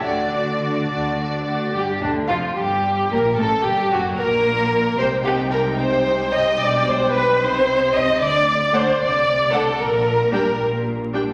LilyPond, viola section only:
\new Staff \with { instrumentName = "Viola section" } { \time 6/8 \key d \major \tempo 4. = 75 << { d'8 d'8 d'8 d'8 d'8 d'8 | \key g \minor g8 d8 f8 g4 bes8 | a8 g8 fis8 bes4. | ees'2. |
d'4. ees'4. | r4 d'16 r4 r16 d'16 r16 | r4 d'16 r4 r16 d'16 r16 | } \\ { a8 a8 a8 a8 a8 a8 | r2. | r2. | g2.~ |
g4. c'4. | r4 a16 r4 r16 a16 r16 | r4 g16 r4 r16 g16 r16 | } >> }